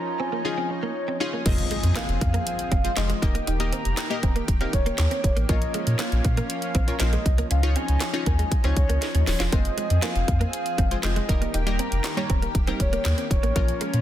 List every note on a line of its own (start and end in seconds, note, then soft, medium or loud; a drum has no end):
0.00 1.44 F3 medium
0.00 1.42 C#4 medium
0.00 1.44 D#4 medium
0.00 0.21 A#5 loud
0.20 0.28 C4 medium
0.20 0.70 G#5 medium
0.32 0.41 A#3 medium
0.45 0.88 C#4 medium
0.45 0.88 D#4 medium
0.45 0.89 F4 medium
0.45 0.89 G#4 medium
0.58 0.66 C4 medium
0.70 1.17 C#5 medium
0.70 muted clean electric guitar stroke soft
0.83 0.91 A#3 medium
1.08 1.17 C4 medium
1.20 1.35 C#4 loud
1.20 1.35 D#4 loud
1.20 1.35 F4 medium
1.20 1.35 G#4 loud
1.20 1.44 C#5 medium
1.20 muted clean electric guitar stroke soft
1.33 1.42 A#3 medium
1.45 1.62 F1 loud
1.45 3.20 F3 medium
1.45 2.04 G#3 medium
1.45 1.54 A#3 medium
1.45 2.04 C4 medium
1.45 3.20 C4 medium
1.45 2.04 F4 medium
1.45 3.20 G#4 loud
1.45 2.04 G#4 medium
1.45 2.04 C5 loud
1.45 1.98 D#5 loud
1.45 kick loud
1.45 closed hi-hat medium
1.45 crash loud
1.45 impact medium
1.58 closed hi-hat medium
1.71 1.80 G#3 medium
1.71 closed hi-hat medium
1.83 1.92 F2 loud
1.83 muted clean electric guitar stroke soft
1.83 closed hi-hat medium
1.95 2.05 A#3 medium
1.95 2.46 F5 loud
1.95 snare medium
1.95 clap loud
1.95 closed hi-hat medium
2.09 2.17 F1 loud
2.09 closed hi-hat soft
2.21 2.38 F2 loud
2.21 muted clean electric guitar stroke soft
2.21 kick medium
2.21 closed hi-hat medium
2.34 2.43 A#3 medium
2.34 closed hi-hat medium
2.47 2.99 F5 loud
2.47 closed hi-hat loud
2.59 closed hi-hat medium
2.72 2.88 F1 loud
2.72 2.80 C4 medium
2.72 kick medium
2.72 closed hi-hat medium
2.84 2.92 G#3 medium
2.84 2.92 C4 medium
2.84 2.92 F4 medium
2.84 2.92 G#4 medium
2.84 2.92 C5 medium
2.84 closed hi-hat medium
2.97 3.14 F1 loud
2.97 3.22 G#3 medium
2.97 3.22 C4 medium
2.97 3.22 F4 medium
2.97 3.22 G#4 medium
2.97 3.22 C5 medium
2.97 3.49 D#5 loud
2.97 snare medium
2.97 clap loud
2.97 closed hi-hat medium
3.10 3.18 G#3 medium
3.10 closed hi-hat medium
3.22 3.39 D#1 loud
3.22 5.47 D#3 medium
3.22 3.52 A#3 medium
3.22 7.47 A#3 medium
3.22 3.52 D#4 medium
3.22 5.47 G4 medium
3.22 3.53 G4 medium
3.22 3.53 A#4 medium
3.22 3.53 D#5 medium
3.22 muted clean electric guitar stroke soft
3.22 kick loud
3.22 closed hi-hat medium
3.35 3.43 A#3 medium
3.35 closed hi-hat medium
3.47 3.72 D#1 loud
3.47 3.56 D#4 medium
3.47 3.72 G5 loud
3.47 closed hi-hat medium
3.60 3.89 A#3 medium
3.60 3.89 D#4 medium
3.60 3.89 G4 medium
3.60 3.89 A#4 medium
3.60 3.89 D#5 medium
3.60 muted clean electric guitar stroke soft
3.60 closed hi-hat medium
3.73 3.81 C4 medium
3.73 4.44 A#5 loud
3.73 closed hi-hat medium
3.85 3.94 F1 loud
3.85 closed hi-hat medium
3.97 muted clean electric guitar stroke soft
3.97 snare medium
3.97 clap loud
3.97 closed hi-hat medium
4.10 4.39 A#3 medium
4.10 4.39 D#4 medium
4.10 4.39 G4 medium
4.10 4.40 A#4 medium
4.10 4.40 D#5 medium
4.10 closed hi-hat soft
4.23 4.40 D#1 loud
4.23 4.32 C4 medium
4.23 kick loud
4.23 closed hi-hat medium
4.36 4.44 A#3 medium
4.36 closed hi-hat medium
4.48 4.65 D#1 loud
4.48 kick medium
4.48 closed hi-hat medium
4.61 5.12 A#3 medium
4.61 4.69 C4 medium
4.61 5.12 D#4 medium
4.61 5.12 G4 medium
4.61 5.12 A#4 medium
4.61 5.12 F5 medium
4.61 closed hi-hat medium
4.73 4.90 D#1 medium
4.73 5.20 C#5 medium
4.73 muted clean electric guitar stroke soft
4.73 kick medium
4.73 closed hi-hat medium
4.86 4.95 A#3 medium
4.86 closed hi-hat medium
4.98 5.07 D#2 loud
4.98 snare medium
4.98 clap loud
4.98 closed hi-hat medium
5.11 5.20 C4 medium
5.11 closed hi-hat medium
5.24 5.32 D#1 loud
5.24 5.35 C#5 medium
5.24 muted clean electric guitar stroke soft
5.24 kick medium
5.24 closed hi-hat medium
5.36 5.45 A1 loud
5.36 5.45 A#3 medium
5.36 closed hi-hat medium
5.49 5.66 A#1 loud
5.49 11.25 F3 medium
5.49 6.07 A#3 medium
5.49 5.58 A#3 medium
5.49 6.07 C#4 medium
5.49 7.49 C#4 loud
5.49 6.07 F4 medium
5.49 6.07 A#4 medium
5.49 6.07 C#5 loud
5.49 6.01 D#5 loud
5.49 kick loud
5.49 closed hi-hat medium
5.62 closed hi-hat medium
5.74 5.83 G#3 medium
5.74 closed hi-hat medium
5.87 5.95 A#2 loud
5.87 muted clean electric guitar stroke soft
5.87 closed hi-hat medium
5.99 6.08 A#3 medium
5.99 6.50 F5 loud
5.99 snare medium
5.99 clap loud
5.99 closed hi-hat medium
6.12 6.20 A#1 loud
6.12 closed hi-hat soft
6.25 6.41 A#2 loud
6.25 muted clean electric guitar stroke soft
6.25 kick loud
6.25 closed hi-hat medium
6.37 6.46 A#3 medium
6.37 closed hi-hat medium
6.50 6.97 F5 loud
6.50 closed hi-hat medium
6.62 closed hi-hat medium
6.75 6.91 A#1 loud
6.75 6.84 C4 medium
6.75 kick medium
6.75 closed hi-hat medium
6.87 6.95 A#3 medium
6.87 6.95 C#4 medium
6.87 6.95 F4 medium
6.87 6.95 A#4 medium
6.87 6.95 C#5 medium
6.87 closed hi-hat medium
7.00 7.17 A#1 medium
7.00 7.37 A#3 medium
7.00 7.37 C#4 medium
7.00 7.37 F4 medium
7.00 7.37 A#4 medium
7.00 7.37 C5 medium
7.00 7.47 D#5 loud
7.00 snare medium
7.00 clap loud
7.00 closed hi-hat medium
7.13 7.22 G#3 medium
7.13 closed hi-hat medium
7.26 7.42 C2 medium
7.26 muted clean electric guitar stroke soft
7.26 kick loud
7.26 closed hi-hat medium
7.38 7.47 A#3 medium
7.38 closed hi-hat medium
7.51 7.76 C#2 loud
7.51 9.50 C#4 medium
7.51 7.59 C#4 medium
7.51 9.50 D#4 loud
7.51 7.78 F5 loud
7.51 closed hi-hat medium
7.63 7.92 C#4 medium
7.63 7.92 D#4 medium
7.63 7.92 F4 medium
7.63 7.92 G#4 medium
7.63 7.93 C#5 medium
7.63 muted clean electric guitar stroke soft
7.63 closed hi-hat medium
7.76 7.85 C4 medium
7.76 8.52 G#5 loud
7.76 closed hi-hat medium
7.88 7.97 C#2 medium
7.88 closed hi-hat medium
8.00 muted clean electric guitar stroke soft
8.00 snare medium
8.00 clap loud
8.00 closed hi-hat medium
8.13 8.43 C#4 medium
8.13 8.43 D#4 medium
8.13 8.43 F4 medium
8.13 8.43 G#4 medium
8.13 8.43 C#5 medium
8.13 closed hi-hat soft
8.26 8.43 D#2 medium
8.26 8.35 A#3 medium
8.26 kick medium
8.26 closed hi-hat medium
8.39 8.48 G#3 medium
8.39 closed hi-hat medium
8.52 kick medium
8.52 closed hi-hat medium
8.64 8.73 C#2 medium
8.64 8.73 C4 medium
8.64 9.15 C#4 medium
8.64 9.15 D#4 medium
8.64 9.15 F4 medium
8.64 9.15 G#4 medium
8.64 9.15 C#5 medium
8.64 closed hi-hat medium
8.77 8.85 C#2 medium
8.77 9.24 C#5 medium
8.77 muted clean electric guitar stroke soft
8.77 kick medium
8.77 closed hi-hat medium
8.89 8.98 C#2 loud
8.89 8.98 A#3 medium
8.89 closed hi-hat medium
9.02 snare medium
9.02 closed hi-hat medium
9.15 9.23 D#2 medium
9.15 9.23 C#4 medium
9.15 closed hi-hat soft
9.27 9.36 D#1 loud
9.27 9.39 C#5 medium
9.27 muted clean electric guitar stroke soft
9.27 snare medium
9.27 open hi-hat medium
9.40 9.48 E1 medium
9.40 9.48 F4 medium
9.40 snare loud
9.40 closed hi-hat medium
9.52 9.69 F1 loud
9.52 10.10 G#3 medium
9.52 9.61 A#3 medium
9.52 10.11 C4 medium
9.52 11.27 C4 medium
9.52 10.11 F4 medium
9.52 10.11 G#4 medium
9.52 11.27 G#4 medium
9.52 10.11 C5 loud
9.52 10.04 D#5 loud
9.52 kick loud
9.52 closed hi-hat medium
9.65 closed hi-hat medium
9.78 9.86 G#3 medium
9.78 closed hi-hat medium
9.90 9.99 F2 loud
9.90 muted clean electric guitar stroke soft
9.90 closed hi-hat medium
10.02 10.12 A#3 medium
10.02 10.53 F5 loud
10.02 snare medium
10.02 clap loud
10.02 closed hi-hat medium
10.16 10.24 F1 loud
10.16 closed hi-hat soft
10.28 10.45 F2 loud
10.28 muted clean electric guitar stroke soft
10.28 kick loud
10.28 closed hi-hat medium
10.41 10.49 A#3 medium
10.41 closed hi-hat medium
10.53 11.00 F5 loud
10.53 closed hi-hat medium
10.66 closed hi-hat medium
10.78 10.95 F1 loud
10.78 10.87 C4 medium
10.78 kick medium
10.78 closed hi-hat medium
10.91 10.98 G#3 medium
10.91 10.98 C4 medium
10.91 10.98 F4 medium
10.91 10.98 G#4 medium
10.91 10.99 C5 medium
10.91 closed hi-hat medium
11.03 11.20 F1 loud
11.03 11.29 G#3 medium
11.03 11.29 C4 medium
11.03 11.29 F4 medium
11.03 11.29 G#4 medium
11.03 11.29 C5 medium
11.03 11.56 D#5 loud
11.03 snare loud
11.03 clap loud
11.03 closed hi-hat medium
11.16 11.25 G#3 medium
11.16 closed hi-hat medium
11.29 11.46 D#1 loud
11.29 13.54 D#3 medium
11.29 11.59 G3 medium
11.29 11.59 A#3 medium
11.29 14.01 A#3 medium
11.29 11.59 D#4 medium
11.29 11.59 G4 medium
11.29 13.54 G4 medium
11.29 11.59 A#4 loud
11.29 muted clean electric guitar stroke soft
11.29 kick loud
11.29 closed hi-hat medium
11.42 11.50 A#3 medium
11.42 closed hi-hat medium
11.54 11.79 D#1 loud
11.54 11.63 D#4 medium
11.54 11.81 G5 loud
11.54 closed hi-hat medium
11.66 11.96 G3 medium
11.66 11.96 A#3 medium
11.66 11.96 D#4 medium
11.66 11.96 G4 medium
11.66 11.96 A#4 medium
11.66 muted clean electric guitar stroke soft
11.66 closed hi-hat medium
11.79 11.88 C4 medium
11.79 12.55 A#5 loud
11.79 closed hi-hat medium
11.92 12.00 F1 loud
11.92 closed hi-hat medium
12.04 muted clean electric guitar stroke soft
12.04 snare medium
12.04 clap loud
12.04 closed hi-hat medium
12.17 12.46 G3 medium
12.17 12.46 A#3 medium
12.17 12.46 D#4 medium
12.17 12.46 G4 medium
12.17 12.46 C#5 loud
12.17 closed hi-hat soft
12.30 12.46 D#1 medium
12.30 12.38 C4 medium
12.30 kick loud
12.30 closed hi-hat medium
12.42 12.51 A#3 medium
12.42 closed hi-hat medium
12.55 12.71 D#1 loud
12.55 kick loud
12.55 closed hi-hat medium
12.67 13.18 G3 medium
12.67 13.18 A#3 medium
12.67 12.76 C4 medium
12.67 13.18 D#4 medium
12.67 13.18 G4 medium
12.67 13.19 A#4 medium
12.67 closed hi-hat medium
12.80 12.96 D#1 medium
12.80 13.27 C#5 loud
12.80 muted clean electric guitar stroke soft
12.80 kick medium
12.80 closed hi-hat medium
12.93 13.01 A#3 medium
12.93 closed hi-hat medium
13.05 13.14 D#2 loud
13.05 snare medium
13.05 clap loud
13.05 closed hi-hat medium
13.18 13.27 C4 medium
13.18 closed hi-hat medium
13.31 13.39 D#1 loud
13.31 14.01 C#5 loud
13.31 muted clean electric guitar stroke soft
13.31 kick loud
13.31 closed hi-hat medium
13.43 13.51 A1 loud
13.43 13.52 A#3 medium
13.43 closed hi-hat medium
13.55 13.72 A#1 loud
13.55 14.01 F3 medium
13.55 14.01 A#3 medium
13.55 13.64 A#3 medium
13.55 14.01 C#4 medium
13.55 14.01 F4 medium
13.55 14.01 A#4 loud
13.55 kick loud
13.55 closed hi-hat medium
13.68 closed hi-hat medium
13.81 13.90 G#3 medium
13.81 closed hi-hat medium
13.94 14.01 A#2 loud
13.94 muted clean electric guitar stroke soft
13.94 closed hi-hat medium